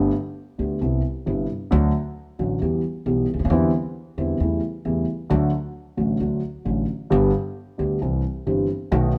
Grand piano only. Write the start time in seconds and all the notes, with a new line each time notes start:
Already playing: G1 G2 D3 A3 B3 G4
0.58 D2 D3 A3 B3 G4
0.81 C2 C3 G3 B3 E4
1.26 G1 G2 C3 G3 B3 E4
1.71 D2 D3 F#3 A3 F#4
2.39 A1 A2 D3 F#3 A3 F#4
2.61 E2 E3 G3 B3 G4
3.06 B1 B2 E3 G3 B3 G4
3.34 C#2
3.39 D2
3.45 D#2
3.50 E2 D3 E3 G3 C4 E4
4.18 E2 D3 E3 G3 C4 E4
4.40 E2 C#3 E3 G3 A3 E4
4.85 E2 C#3 E3 G3 A3 E4
5.30 D2 D3 F#3 A3 F#4
5.97 A1 A2 D3 F#3 A3 F#4
6.20 D2 D3 F#3 A3 F#4
6.65 A1 A2 D3 F#3 A3 F#4
7.10 G1 G2 D3 G3 B3 G4
7.78 D2 D3 G3 B3 G4
8.01 C2 C3 E3 G3 C4 G4
8.46 G1 G2 E3 G3 C4 G4
8.92 B1 B2 D#3 A3 B3 F#4